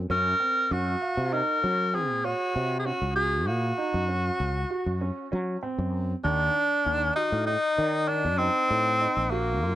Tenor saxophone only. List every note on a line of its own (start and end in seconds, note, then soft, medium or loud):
0.11 0.74 A#4 loud
0.73 1.35 F#4 medium
1.34 1.96 A#4 loud
1.95 2.27 G#4 medium
2.25 2.79 F#4 loud
2.79 2.87 G#4 medium
2.86 3.15 F#4 medium
3.16 3.49 G#4 medium
3.47 5.32 F#4 medium
6.24 7.13 D4 loud
7.16 7.45 D#4 loud
7.46 8.10 D#4 loud
8.08 8.39 D4 loud
8.38 9.32 C4 loud
9.30 9.75 A#3 loud